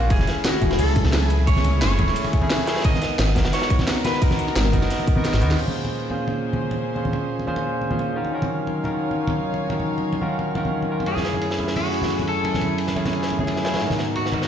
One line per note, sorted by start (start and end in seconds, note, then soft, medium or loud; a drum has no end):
0.00 0.12 A#3 loud
0.00 0.10 C#4 medium
0.00 0.12 F4 medium
0.00 0.13 F#4 loud
0.08 0.26 F#1 loud
0.08 2.82 F#3 medium
0.08 0.59 A3 medium
0.08 2.82 A3 medium
0.08 0.59 C#4 medium
0.08 2.82 E4 medium
0.08 0.60 E4 medium
0.08 0.46 G#4 medium
0.08 0.61 G#4 medium
0.08 2.82 G#5 medium
0.08 kick loud
0.08 closed hi-hat medium
0.08 ride medium
0.19 snare soft
0.19 muted conga medium
0.19 high conga loud
0.27 snare medium
0.27 closed hi-hat medium
0.27 ride medium
0.44 0.80 F#4 medium
0.44 snare loud
0.44 closed hi-hat medium
0.44 ride loud
0.44 ride medium
0.44 muted conga medium
0.53 snare soft
0.60 0.77 E1 medium
0.60 0.70 A3 medium
0.60 0.70 C#4 medium
0.60 0.70 E4 medium
0.60 0.71 G#4 medium
0.60 kick medium
0.60 closed hi-hat medium
0.60 ride medium
0.60 high conga medium
0.71 snare medium
0.71 snare soft
0.79 1.83 C#2 loud
0.79 1.28 A4 loud
0.79 closed hi-hat medium
0.79 open hi-hat medium
0.79 ride medium
0.79 muted conga medium
0.88 ride soft
0.96 kick loud
0.96 closed hi-hat medium
0.96 ride medium
1.04 snare soft
1.04 muted conga medium
1.04 high conga medium
1.13 snare loud
1.13 closed hi-hat medium
1.13 ride medium
1.28 1.50 G#4 loud
1.28 closed hi-hat medium
1.28 ride medium
1.39 muted conga medium
1.46 1.96 A3 medium
1.46 1.97 C#4 medium
1.46 1.97 E4 medium
1.46 1.98 G#4 medium
1.46 1.80 C#5 loud
1.46 kick loud
1.46 closed hi-hat medium
1.46 ride medium
1.56 snare soft
1.56 high conga medium
1.64 closed hi-hat medium
1.64 ride medium
1.64 muted conga medium
1.81 2.00 F#1 medium
1.81 2.46 C#5 loud
1.81 snare loud
1.81 closed hi-hat medium
1.81 ride medium
1.91 snare medium
1.91 snare soft
1.98 2.14 E1 medium
1.98 2.07 A3 loud
1.98 2.07 C#4 medium
1.98 2.08 E4 medium
1.98 2.08 G#4 loud
1.98 kick medium
1.98 closed hi-hat medium
1.98 ride medium
1.98 muted conga soft
1.98 high conga medium
2.08 snare soft
2.16 closed hi-hat medium
2.16 ride medium
2.24 muted conga medium
2.33 kick loud
2.33 closed hi-hat medium
2.33 ride medium
2.41 2.65 A3 medium
2.41 2.65 C#4 medium
2.41 2.66 E4 medium
2.41 2.66 G#4 loud
2.41 high conga loud
2.50 snare loud
2.50 closed hi-hat medium
2.50 ride medium
2.58 snare soft
2.58 muted conga medium
2.67 2.82 A3 loud
2.67 2.83 C#4 medium
2.67 2.83 E4 medium
2.67 2.83 G#4 loud
2.67 snare loud
2.67 closed hi-hat medium
2.67 ride medium
2.76 snare loud
2.76 ride medium
2.80 3.33 B3 medium
2.80 snare medium
2.80 ride medium
2.84 5.56 G#3 medium
2.84 5.56 B3 medium
2.84 5.56 F#4 medium
2.84 3.34 F#4 medium
2.84 5.56 A#4 medium
2.84 3.33 D#5 loud
2.84 kick loud
2.84 closed hi-hat loud
2.84 ride medium
2.84 ride loud
2.84 muted conga medium
2.93 snare soft
2.93 high conga medium
3.02 snare medium
3.02 closed hi-hat medium
3.02 ride medium
3.18 3.38 G#1 medium
3.18 snare loud
3.18 closed hi-hat loud
3.18 ride medium
3.18 muted conga medium
3.28 snare soft
3.35 3.52 F#1 medium
3.35 3.44 B3 medium
3.35 3.44 D#4 medium
3.35 3.45 F#4 medium
3.35 3.45 A#4 medium
3.35 kick medium
3.35 snare loud
3.35 closed hi-hat medium
3.35 ride medium
3.35 high conga medium
3.45 snare loud
3.45 snare soft
3.45 ride medium
3.45 muted conga medium
3.53 4.05 C#5 loud
3.53 snare loud
3.53 closed hi-hat medium
3.53 ride medium
3.62 snare loud
3.62 ride medium
3.70 kick loud
3.70 closed hi-hat medium
3.70 ride medium
3.79 snare soft
3.79 snare medium
3.79 muted conga soft
3.79 high conga medium
3.87 snare loud
3.87 closed hi-hat loud
3.87 ride medium
4.05 4.22 B4 medium
4.05 snare loud
4.05 closed hi-hat medium
4.05 ride medium
4.05 muted conga medium
4.13 snare soft
4.20 4.70 B3 medium
4.20 4.71 D#4 medium
4.20 4.72 F#4 medium
4.20 5.25 A#4 medium
4.20 4.72 A#4 medium
4.20 kick loud
4.20 closed hi-hat loud
4.20 ride medium
4.31 snare soft
4.31 high conga loud
4.39 closed hi-hat medium
4.39 ride medium
4.39 muted conga medium
4.48 snare medium
4.56 4.75 G#1 medium
4.56 snare loud
4.56 closed hi-hat loud
4.56 ride medium
4.56 ride loud
4.65 snare medium
4.65 snare soft
4.65 muted conga medium
4.72 4.89 F#1 medium
4.72 4.81 B3 loud
4.72 4.82 D#4 medium
4.72 4.82 F#4 medium
4.72 4.82 A#4 loud
4.72 kick medium
4.72 closed hi-hat medium
4.72 ride medium
4.72 high conga medium
4.82 snare soft
4.90 snare soft
4.90 closed hi-hat loud
4.90 ride medium
4.99 muted conga medium
5.07 kick loud
5.07 closed hi-hat medium
5.16 5.39 B3 medium
5.16 5.40 D#4 medium
5.16 5.40 F#4 medium
5.16 5.40 A#4 medium
5.16 high conga medium
5.25 snare medium
5.25 closed hi-hat loud
5.25 ride medium
5.25 muted conga medium
5.33 5.43 G#1 medium
5.33 snare medium
5.41 5.57 D#2 loud
5.41 5.56 B3 loud
5.41 5.57 D#4 medium
5.41 5.57 F#4 medium
5.41 5.57 A#4 loud
5.41 closed hi-hat medium
5.51 snare medium
5.51 ride medium
5.57 6.07 A#2 medium
5.57 8.13 A#3 medium
5.57 6.08 C#4 medium
5.57 8.13 C#4 medium
5.57 6.08 F4 medium
5.57 8.13 G#4 medium
5.57 6.09 G#4 medium
5.57 8.13 C5 medium
5.57 6.09 C5 medium
5.57 crash medium
5.68 muted conga soft
5.68 high conga medium
5.85 muted conga medium
6.09 6.18 A#2 medium
6.09 6.19 C#4 medium
6.09 6.19 F4 medium
6.09 6.19 G#4 medium
6.09 6.19 C5 medium
6.09 muted conga medium
6.09 high conga medium
6.28 muted conga medium
6.53 muted conga soft
6.53 high conga loud
6.71 muted conga medium
6.94 7.45 A#2 medium
6.94 7.45 C#4 medium
6.94 7.46 F4 medium
6.94 7.46 G#4 medium
6.94 7.46 C5 medium
6.94 muted conga medium
7.05 high conga loud
7.13 muted conga medium
7.39 muted conga medium
7.46 7.55 A#2 loud
7.46 7.56 C#4 medium
7.46 7.56 F4 medium
7.46 7.56 G#4 medium
7.46 7.56 C5 loud
7.46 high conga medium
7.56 muted conga medium
7.81 muted conga medium
7.90 8.14 A#2 medium
7.90 8.14 C#4 medium
7.90 8.14 F4 medium
7.90 8.14 G#4 medium
7.90 8.14 C5 medium
7.90 high conga medium
7.99 muted conga medium
8.15 8.30 D#3 medium
8.15 13.78 F#3 medium
8.15 8.31 C#4 medium
8.15 11.05 D#4 medium
8.15 8.31 F4 medium
8.15 8.31 F#4 medium
8.15 8.32 A#4 medium
8.15 11.04 C#5 medium
8.15 11.05 F5 medium
8.25 muted conga soft
8.31 8.82 D#3 medium
8.31 8.82 C#4 medium
8.31 8.83 F4 medium
8.31 8.83 F#4 medium
8.31 8.84 A#4 medium
8.42 muted conga medium
8.42 high conga medium
8.67 muted conga medium
8.84 8.93 D#3 medium
8.84 8.93 C#4 medium
8.84 8.93 F4 medium
8.84 8.93 F#4 medium
8.84 8.94 A#4 medium
8.84 muted conga medium
8.84 high conga medium
9.11 muted conga soft
9.27 muted conga medium
9.27 high conga loud
9.54 muted conga medium
9.68 10.19 D#3 medium
9.68 10.19 C#4 medium
9.68 10.20 F4 medium
9.68 10.20 F#4 medium
9.68 10.21 A#4 medium
9.68 muted conga medium
9.80 high conga medium
9.98 muted conga soft
10.13 muted conga medium
10.21 10.30 D#3 medium
10.21 10.30 C#4 medium
10.21 10.30 F4 medium
10.21 10.31 F#4 medium
10.21 10.31 A#4 loud
10.21 high conga medium
10.39 muted conga medium
10.55 10.88 D#3 medium
10.55 10.88 C#4 medium
10.55 10.88 F4 medium
10.55 10.89 F#4 medium
10.55 10.89 A#4 medium
10.55 muted conga medium
10.65 high conga medium
10.83 muted conga medium
10.90 11.05 D#3 medium
10.90 11.05 C#4 medium
10.90 11.06 F4 medium
10.90 11.06 F#4 medium
10.90 11.06 A#4 medium
11.00 muted conga medium
11.06 11.56 F#2 medium
11.06 11.57 A3 medium
11.06 13.79 A3 medium
11.06 11.57 C#4 medium
11.06 13.79 E4 medium
11.06 11.58 E4 medium
11.06 11.76 G#4 medium
11.06 11.58 G#4 medium
11.06 13.79 G#5 medium
11.06 ride medium
11.16 snare soft
11.16 muted conga medium
11.16 high conga medium
11.25 snare medium
11.25 ride medium
11.33 muted conga medium
11.41 ride medium
11.51 snare medium
11.58 11.67 F#2 medium
11.58 11.67 A3 medium
11.58 11.68 C#4 medium
11.58 11.68 E4 medium
11.58 11.68 G#4 medium
11.58 ride medium
11.58 muted conga medium
11.58 high conga medium
11.68 snare medium
11.76 12.24 F#4 medium
11.76 open hi-hat medium
11.76 muted conga medium
11.84 ride soft
11.94 ride medium
12.01 snare soft
12.01 muted conga soft
12.01 high conga medium
12.10 ride medium
12.19 muted conga medium
12.27 13.27 A4 loud
12.27 ride medium
12.43 12.93 F#2 medium
12.43 12.94 A3 medium
12.43 12.94 C#4 medium
12.43 12.95 E4 medium
12.43 12.95 G#5 medium
12.43 ride medium
12.43 muted conga soft
12.54 snare soft
12.54 high conga medium
12.61 ride medium
12.61 muted conga medium
12.78 ride medium
12.87 snare soft
12.87 muted conga soft
12.95 13.04 F#2 medium
12.95 13.05 A3 medium
12.95 13.05 C#4 medium
12.95 13.05 E4 medium
12.95 13.05 G#4 loud
12.95 ride medium
12.95 high conga medium
13.05 snare soft
13.05 muted conga medium
13.13 ride medium
13.22 snare soft
13.30 ride medium
13.30 muted conga soft
13.38 13.62 F#2 medium
13.38 13.63 A3 medium
13.38 13.63 C#4 medium
13.38 13.63 E4 medium
13.38 13.63 G#4 medium
13.38 high conga medium
13.47 ride medium
13.47 muted conga medium
13.56 snare soft
13.64 13.79 F#2 medium
13.64 13.80 A3 medium
13.64 13.80 C#4 medium
13.64 13.80 E4 medium
13.64 13.80 G#4 loud
13.64 snare loud
13.64 ride medium
13.74 snare medium
13.74 ride medium
13.74 muted conga soft
13.79 14.30 G#2 medium
13.79 14.31 B3 medium
13.79 snare medium
13.79 ride medium
13.81 14.48 G#3 medium
13.81 14.48 B3 medium
13.81 14.31 D#4 medium
13.81 14.48 F#4 medium
13.81 14.32 F#4 medium
13.81 14.32 A#4 medium
13.81 14.48 A#5 medium
13.81 ride medium
13.90 snare soft
13.90 muted conga medium
13.90 high conga loud
13.99 snare medium
13.99 ride medium
14.16 14.48 F#4 medium
14.16 ride medium
14.16 muted conga soft
14.26 snare soft
14.32 14.41 G#2 medium
14.32 14.42 B3 medium
14.32 14.42 D#4 medium
14.32 14.42 F#4 medium
14.32 14.42 A#4 medium
14.32 ride medium
14.32 muted conga medium
14.32 high conga medium
14.42 snare medium